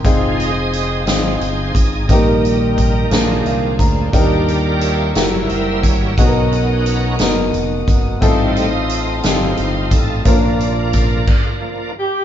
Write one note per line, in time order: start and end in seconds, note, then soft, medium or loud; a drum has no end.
0.00 2.06 G#5 medium
0.00 2.05 C6 medium
0.05 1.07 F1 medium
0.05 0.50 F3 soft
0.05 0.50 G#3 soft
0.05 0.70 C4 medium
0.05 0.70 D#4 medium
0.05 0.51 D#4 medium
0.05 0.70 F4 medium
0.05 0.71 G#4 medium
0.05 0.38 G#4 medium
0.05 0.37 C5 medium
0.05 2.07 F5 medium
0.05 3.08 D#6 medium
0.05 kick medium
0.05 closed hi-hat medium
0.38 1.06 G#4 medium
0.38 1.04 C5 medium
0.38 1.09 D#5 loud
0.38 closed hi-hat soft
0.73 closed hi-hat medium
1.06 1.38 G#1 medium
1.06 1.72 C4 soft
1.06 2.05 D#4 medium
1.06 1.72 D#4 soft
1.06 1.73 F4 soft
1.06 1.72 G#4 medium
1.06 1.73 G#4 medium
1.06 1.77 C5 medium
1.06 snare medium
1.06 closed hi-hat medium
1.41 1.72 G1 medium
1.41 closed hi-hat soft
1.74 2.07 G#1 medium
1.74 2.09 G#4 medium
1.74 kick medium
1.74 closed hi-hat medium
2.08 3.07 A#1 medium
2.08 3.08 A#2 medium
2.08 3.76 D#3 soft
2.08 3.07 G3 soft
2.08 3.07 A#3 soft
2.08 2.75 A#3 medium
2.08 3.08 D#4 soft
2.08 2.75 D#4 medium
2.08 2.75 G4 medium
2.08 3.75 A#4 medium
2.08 3.10 D#5 medium
2.08 3.11 G5 soft
2.08 8.18 A#5 soft
2.08 kick medium
2.08 closed hi-hat medium
2.12 2.76 A#4 medium
2.45 closed hi-hat soft
2.78 kick medium
2.78 closed hi-hat medium
3.10 3.43 A#1 medium
3.10 4.10 A#2 medium
3.10 4.09 G#3 soft
3.10 4.09 C4 soft
3.10 3.76 D4 medium
3.10 4.10 D4 soft
3.10 3.76 F4 medium
3.10 3.77 G#4 soft
3.10 3.77 A#4 medium
3.10 4.12 F5 medium
3.10 4.12 G#5 medium
3.10 snare medium
3.10 closed hi-hat medium
3.45 3.77 C2 medium
3.45 3.78 F5 medium
3.45 closed hi-hat soft
3.79 4.11 D2 medium
3.79 4.11 A#5 medium
3.79 kick medium
3.79 closed hi-hat medium
4.12 5.12 D#2 medium
4.12 5.12 D#3 soft
4.12 5.11 G3 soft
4.12 5.12 A#3 soft
4.12 4.79 D4 medium
4.12 4.79 D#4 medium
4.12 5.12 F4 soft
4.12 5.11 G4 soft
4.12 4.79 G4 medium
4.12 4.80 A#4 medium
4.12 5.15 A#4 medium
4.12 4.79 A#4 medium
4.12 5.12 D5 soft
4.12 kick medium
4.12 closed hi-hat medium
4.48 closed hi-hat soft
4.79 5.80 A#4 medium
4.79 5.51 C#5 medium
4.79 5.80 E5 medium
4.79 closed hi-hat medium
5.15 5.47 F#1 medium
5.15 6.14 G3 soft
5.15 6.14 A#3 soft
5.15 5.81 E4 medium
5.15 6.14 E4 soft
5.15 5.81 F#4 soft
5.15 5.81 G4 soft
5.15 5.81 A#4 medium
5.15 8.19 F#5 medium
5.15 6.17 E6 medium
5.15 snare medium
5.15 closed hi-hat medium
5.48 5.84 F#1 medium
5.48 5.84 C5 medium
5.48 closed hi-hat soft
5.82 6.15 G#1 medium
5.82 6.15 C#5 medium
5.82 kick medium
5.82 closed hi-hat medium
6.17 7.16 B1 medium
6.17 7.16 B2 medium
6.17 7.16 B3 soft
6.17 6.83 B3 medium
6.17 7.16 C#4 soft
6.17 7.16 D#4 soft
6.17 6.83 D#4 medium
6.17 7.16 F#4 medium
6.17 6.83 F#4 medium
6.17 6.25 G#4 medium
6.17 7.16 A#4 soft
6.17 6.90 D#5 medium
6.17 8.20 D#6 medium
6.17 kick medium
6.17 closed hi-hat medium
6.26 6.87 A#4 medium
6.53 closed hi-hat soft
6.86 closed hi-hat medium
7.19 7.51 F#1 medium
7.19 7.85 B3 medium
7.19 7.85 D#4 medium
7.19 7.85 F#4 medium
7.19 7.85 A#4 medium
7.19 snare medium
7.19 closed hi-hat medium
7.54 7.86 F1 medium
7.54 closed hi-hat soft
7.87 8.19 F#1 medium
7.87 kick medium
7.87 closed hi-hat medium
8.21 9.20 A1 medium
8.21 9.20 A2 medium
8.21 8.67 G3 soft
8.21 8.67 A3 soft
8.21 8.86 C4 medium
8.21 8.87 D#4 medium
8.21 9.20 D#4 medium
8.21 8.87 F4 medium
8.21 9.20 F4 medium
8.21 8.87 A4 medium
8.21 8.55 C5 medium
8.21 11.25 F5 medium
8.21 10.24 A5 medium
8.21 10.24 C6 medium
8.21 10.24 D#6 medium
8.21 kick medium
8.21 closed hi-hat medium
8.55 9.24 C5 medium
8.55 9.20 D#5 medium
8.55 closed hi-hat soft
8.89 closed hi-hat medium
9.23 9.56 G1 medium
9.23 9.89 C4 medium
9.23 9.89 D#4 soft
9.23 10.22 D#4 medium
9.23 10.22 F4 medium
9.23 9.89 F4 soft
9.23 9.31 G4 soft
9.23 9.94 C5 medium
9.23 snare medium
9.23 closed hi-hat medium
9.32 9.93 A4 medium
9.57 9.89 G1 medium
9.57 closed hi-hat soft
9.91 10.23 A1 medium
9.91 10.23 A4 medium
9.91 kick medium
9.91 closed hi-hat medium
10.25 11.23 A#1 medium
10.25 11.24 A#2 medium
10.25 11.23 F3 soft
10.25 10.90 A#3 medium
10.25 11.24 A#3 soft
10.25 10.32 C#4 soft
10.25 11.61 D4 soft
10.25 11.92 F4 soft
10.25 10.91 F4 medium
10.25 11.92 A#4 medium
10.25 10.91 A#4 medium
10.25 11.27 D5 medium
10.25 11.27 A#5 medium
10.25 11.27 D6 medium
10.25 kick medium
10.25 closed hi-hat medium
10.32 10.94 D4 medium
10.60 closed hi-hat soft
10.93 kick medium
10.93 snare soft
10.93 closed hi-hat medium
11.27 kick medium
11.27 crash medium
11.62 11.92 F3 soft
11.62 11.92 A#3 soft
11.62 11.92 D4 soft
11.99 12.24 G4 medium